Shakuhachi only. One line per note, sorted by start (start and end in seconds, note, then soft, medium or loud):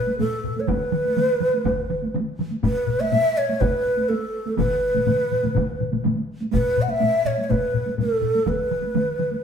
0.00 0.19 B4 medium
0.19 0.62 A4 medium
0.60 0.70 C#5 medium
0.68 2.15 B4 medium
2.65 3.02 B4 medium
3.00 3.39 E5 medium
3.37 3.62 C#5 medium
3.61 4.10 B4 medium
4.09 4.57 A4 medium
4.58 6.00 B4 medium
6.53 6.83 B4 medium
6.82 6.91 F#5 medium
6.89 7.28 E5 medium
7.26 7.44 C#5 medium
7.44 7.52 C#5 medium
7.50 7.99 B4 medium
8.00 8.50 A4 medium
8.48 9.44 B4 medium